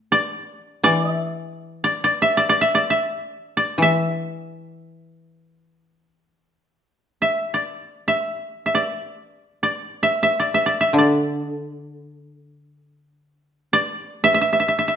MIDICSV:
0, 0, Header, 1, 3, 480
1, 0, Start_track
1, 0, Tempo, 500000
1, 14363, End_track
2, 0, Start_track
2, 0, Title_t, "Koto"
2, 0, Program_c, 0, 107
2, 114, Note_on_c, 0, 74, 87
2, 806, Note_off_c, 0, 74, 0
2, 806, Note_on_c, 0, 74, 93
2, 978, Note_off_c, 0, 74, 0
2, 978, Note_on_c, 0, 75, 93
2, 1084, Note_off_c, 0, 75, 0
2, 1084, Note_on_c, 0, 76, 93
2, 1766, Note_on_c, 0, 74, 83
2, 1954, Note_off_c, 0, 74, 0
2, 1958, Note_on_c, 0, 74, 81
2, 2127, Note_off_c, 0, 76, 0
2, 2130, Note_on_c, 0, 76, 87
2, 2273, Note_off_c, 0, 74, 0
2, 2277, Note_on_c, 0, 74, 81
2, 2390, Note_off_c, 0, 74, 0
2, 2394, Note_on_c, 0, 74, 81
2, 2504, Note_off_c, 0, 76, 0
2, 2508, Note_on_c, 0, 76, 83
2, 2633, Note_off_c, 0, 74, 0
2, 2637, Note_on_c, 0, 74, 74
2, 2782, Note_off_c, 0, 76, 0
2, 2786, Note_on_c, 0, 76, 77
2, 3423, Note_off_c, 0, 74, 0
2, 3427, Note_on_c, 0, 74, 73
2, 3666, Note_off_c, 0, 76, 0
2, 3669, Note_on_c, 0, 76, 73
2, 4963, Note_off_c, 0, 74, 0
2, 5103, Note_off_c, 0, 76, 0
2, 6929, Note_on_c, 0, 76, 69
2, 7237, Note_on_c, 0, 74, 69
2, 7751, Note_off_c, 0, 76, 0
2, 7754, Note_on_c, 0, 76, 75
2, 8309, Note_off_c, 0, 76, 0
2, 8313, Note_on_c, 0, 76, 54
2, 8393, Note_off_c, 0, 74, 0
2, 8396, Note_on_c, 0, 74, 72
2, 9240, Note_off_c, 0, 74, 0
2, 9244, Note_on_c, 0, 74, 71
2, 9623, Note_off_c, 0, 76, 0
2, 9627, Note_on_c, 0, 76, 76
2, 9816, Note_off_c, 0, 76, 0
2, 9819, Note_on_c, 0, 76, 74
2, 9976, Note_off_c, 0, 74, 0
2, 9979, Note_on_c, 0, 74, 67
2, 10117, Note_off_c, 0, 76, 0
2, 10121, Note_on_c, 0, 76, 69
2, 10230, Note_off_c, 0, 74, 0
2, 10234, Note_on_c, 0, 74, 69
2, 10370, Note_off_c, 0, 76, 0
2, 10374, Note_on_c, 0, 76, 76
2, 10540, Note_off_c, 0, 74, 0
2, 10544, Note_on_c, 0, 74, 67
2, 10956, Note_off_c, 0, 74, 0
2, 10956, Note_on_c, 0, 75, 67
2, 11062, Note_off_c, 0, 75, 0
2, 11062, Note_on_c, 0, 74, 67
2, 11807, Note_off_c, 0, 76, 0
2, 12080, Note_off_c, 0, 74, 0
2, 13182, Note_on_c, 0, 74, 91
2, 13668, Note_on_c, 0, 76, 99
2, 13766, Note_off_c, 0, 76, 0
2, 13770, Note_on_c, 0, 76, 65
2, 13833, Note_off_c, 0, 76, 0
2, 13836, Note_on_c, 0, 76, 72
2, 13942, Note_off_c, 0, 76, 0
2, 13946, Note_on_c, 0, 76, 59
2, 14009, Note_off_c, 0, 76, 0
2, 14013, Note_on_c, 0, 76, 64
2, 14092, Note_off_c, 0, 76, 0
2, 14095, Note_on_c, 0, 76, 60
2, 14190, Note_off_c, 0, 76, 0
2, 14194, Note_on_c, 0, 76, 69
2, 14280, Note_off_c, 0, 76, 0
2, 14284, Note_on_c, 0, 76, 59
2, 14354, Note_off_c, 0, 76, 0
2, 14363, Note_off_c, 0, 74, 0
2, 14363, End_track
3, 0, Start_track
3, 0, Title_t, "Koto"
3, 0, Program_c, 1, 107
3, 801, Note_on_c, 1, 52, 52
3, 3433, Note_off_c, 1, 52, 0
3, 3628, Note_on_c, 1, 52, 53
3, 6429, Note_off_c, 1, 52, 0
3, 10494, Note_on_c, 1, 50, 52
3, 13096, Note_off_c, 1, 50, 0
3, 14363, End_track
0, 0, End_of_file